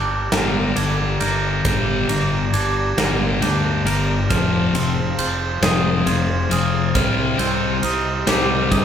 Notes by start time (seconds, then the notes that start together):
Already playing: G1 G2 A#3 D4 G4 D5 A#5 D6 G6
0.32 G1 G2 D3 G3 A#4, snare, ride
0.76 G1 G2 D3 D4 G#6, ride
1.20 G1 G2 D3 A#4 G6, ride
1.64 G1 G2 D3 G3 G6, kick, ride
2.09 G1 G2 D3 A#3 A#6, ride
2.53 G1 D4 G#6, ride
2.97 G1 G2 D3 G3 A#4 A#6, snare, ride
3.41 D2 G2 D3 D4 G6, ride
3.85 G1 G2 D3 A#4, ride
4.30 F1 F2 C3 F3 G#4 C5 F5 C6 F6, kick, ride
4.73 F1 F2 C3 C4, ride
5.17 F1 F4 G6, ride
5.61 F1 F2 C3 F3 G#4, snare, ride
6.06 F1 F2 C3 F4 G#6, ride
6.50 F1 F2 C3 G#4 F6, ride
6.95 C2 C3 G3 C4 G4 D#5 F6, kick, ride
7.38 C2 C3 G3 C4 G6, ride
7.83 C2 D#4 F6, ride
8.27 C2 C3 G3 C4 G4 G6, snare, ride
8.71 G2 C3 G3 D#4 D#6, kick, ride